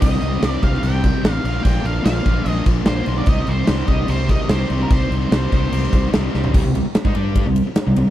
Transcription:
0.01 fingered electric bass C2, distorted electric guitar C3 D#3 G3 C4 G4, lead electric guitar D#5, kick, crash
0.22 fingered electric bass C2, crash
0.42 fingered electric bass C2, distorted electric guitar C3 D#3 G3 C4 G4, snare, crash
0.46 lead electric guitar D5
0.62 fingered electric bass C2, distorted electric guitar C3 D#3 G3 C4 G4, lead electric guitar F5, kick, crash
0.74 snare
0.83 fingered electric bass C2, distorted electric guitar C3 D#3 G3 C4 G4, lead electric guitar G5, crash
1.03 kick, crash
1.24 fingered electric bass A1, distorted electric guitar C3 D#3 G3 C4 G4, snare, crash
1.32 lead electric guitar F5
1.44 fingered electric bass A#1, distorted electric guitar A#2 D3 A#3 D4 F4, lead electric guitar F5, crash
1.63 fingered electric bass A#1, distorted electric guitar A#2 D3 A#3 D4, lead electric guitar G5, kick, crash
1.67 distorted electric guitar F4
1.84 fingered electric bass A#1, lead electric guitar F5, crash
2.05 fingered electric bass A#1, distorted electric guitar A#2 D3 A#3 D4 F4, lead electric guitar F5, snare, crash
2.26 fingered electric bass A#1, distorted electric guitar A#2 D3 A#3 D4 F4, kick, crash
2.46 fingered electric bass A#1, distorted electric guitar A#2 D3 A#3 D4 F4, lead electric guitar D#5, crash
2.66 fingered electric bass A#1, kick, crash
2.85 fingered electric bass A#1, distorted electric guitar A#2 D3 A#3 D4 F4, lead electric guitar C5, snare, crash
3.06 fingered electric bass B1, distorted electric guitar A#2 D3 A#3 D4 F4, crash
3.17 lead electric guitar D5
3.26 fingered electric bass C2, distorted electric guitar C3 D#3 G3 C4 G4, lead electric guitar D#5, kick, crash
3.47 fingered electric bass C2, lead electric guitar C5, crash
3.67 fingered electric bass C2, distorted electric guitar C3 D#3 G3 C4 G4, snare, crash
3.87 fingered electric bass C2, distorted electric guitar C3 D#3 G3 C4 G4, lead electric guitar D#5, kick, crash
4.08 fingered electric bass C2, distorted electric guitar C3 D#3 G3 C4 G4, lead electric guitar C5, crash
4.29 lead electric guitar D#5, kick, crash
4.49 fingered electric bass C2, distorted electric guitar C3 D#3 G3 C4 G4, lead electric guitar C5, snare, crash
4.70 fingered electric bass C2, distorted electric guitar C3 D#3 G3 C4 G4, crash
4.83 lead electric guitar A#4
4.90 fingered electric bass C2, distorted electric guitar C3 D#3 G3 C4 G4, lead electric guitar C5, kick, crash
5.11 fingered electric bass C2, crash
5.31 fingered electric bass C2, distorted electric guitar C3 D#3 G3 C4 G4, snare, crash
5.52 fingered electric bass C2, distorted electric guitar C3 D#3 G3 C4 G4, kick, crash
5.63 snare
5.72 fingered electric bass C2, distorted electric guitar C3 D#3 G3 C4 G4, crash
5.93 fingered electric bass C2, kick, crash
6.13 fingered electric bass C2, distorted electric guitar C3 D#3 G3 C4 G4, snare, crash
6.33 fingered electric bass C2, distorted electric guitar C3 D#3 G3 C4 G4, snare
6.44 floor tom
6.54 fingered electric bass C2, distorted electric guitar C3 G3, kick, crash
6.64 fingered electric bass C2, distorted electric guitar C3 G3
6.75 fingered electric bass C2, distorted electric guitar C3 G3, ride
6.86 muted distorted electric guitar stroke, muted fingered electric bass stroke
6.95 muted distorted electric guitar stroke, muted fingered electric bass stroke, snare, ride
7.05 fingered electric bass G#2, distorted electric guitar G#3 D#4, kick
7.15 fingered electric bass G2, distorted electric guitar G3 D4 G4, ride
7.35 kick, ride
7.46 fingered electric bass C2, distorted electric guitar C3 G3
7.56 ride
7.66 muted fingered electric bass stroke, muted distorted electric guitar stroke
7.76 snare, ride
7.87 fingered electric bass C2, distorted electric guitar C3 G3
7.96 fingered electric bass C2, distorted electric guitar C3 G3, ride
8.07 muted fingered electric bass stroke

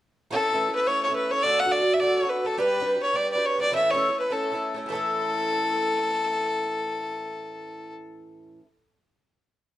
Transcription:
0.31 twelve-string acoustic guitar A2 E3 A3 C#4 E4 A4, fiddle A4
0.53 twelve-string acoustic guitar A2 E3 A3 C#4 E4 A4
0.67 twelve-string acoustic guitar A3 C#4 E4 A4
0.75 fiddle B4
0.87 twelve-string acoustic guitar A3 C#4 E4 A4, fiddle C#5
1.03 fiddle C#5
1.09 twelve-string acoustic guitar A3 C#4 E4 A4
1.16 fiddle B4
1.31 twelve-string acoustic guitar A3 C#4 E4 A4, fiddle C#5
1.43 twelve-string acoustic guitar D3 A3 D4 F#4 A4, fiddle D5
1.59 fiddle F#5
1.65 twelve-string acoustic guitar D3 A3 D4 F#4 A4
1.72 fiddle D5
1.80 twelve-string acoustic guitar D4 F#4 A4
1.93 fiddle E5
1.99 twelve-string acoustic guitar A3 D4 F#4 A4, fiddle D5
2.16 fiddle C#5
2.23 twelve-string acoustic guitar D4 F#4 A4
2.29 fiddle B4
2.45 twelve-string acoustic guitar A3 D4 F#4 A4, fiddle A4
2.57 twelve-string acoustic guitar G3 D4 G4 B4, fiddle B4
2.80 twelve-string acoustic guitar G3 D4 G4 B4
2.95 twelve-string acoustic guitar D4 G4 B4
3.02 fiddle C#5
3.14 twelve-string acoustic guitar G3 D4 G4 B4, fiddle D5
3.32 twelve-string acoustic guitar B4, fiddle D5
3.37 twelve-string acoustic guitar D4 G4
3.46 fiddle C#5
3.58 twelve-string acoustic guitar G3 D4 G4 B4, fiddle D5
3.71 twelve-string acoustic guitar A2 E3 A3 C#4 E4 A4, fiddle E5
3.90 twelve-string acoustic guitar A3 C#4 E4 A4, fiddle C#5
3.94 twelve-string acoustic guitar A2 E3
4.08 twelve-string acoustic guitar A3 C#4 E4 A4
4.20 fiddle B4
4.30 twelve-string acoustic guitar A3 C#4 E4 A4, fiddle A4
4.52 twelve-string acoustic guitar A3 C#4 E4 A4
4.74 twelve-string acoustic guitar A3 C#4 E4 A4
4.86 twelve-string acoustic guitar A2 E3 A3, fiddle A4
4.92 twelve-string acoustic guitar C#4 E4 A4

